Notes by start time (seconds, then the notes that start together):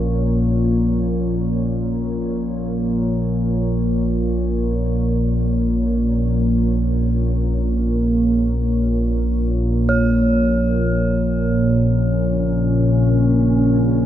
Already playing: A#1 A#2 A#3 F4 A#4 C#5
9.89 A#2 C#5
11.13 C#4
13.13 G#4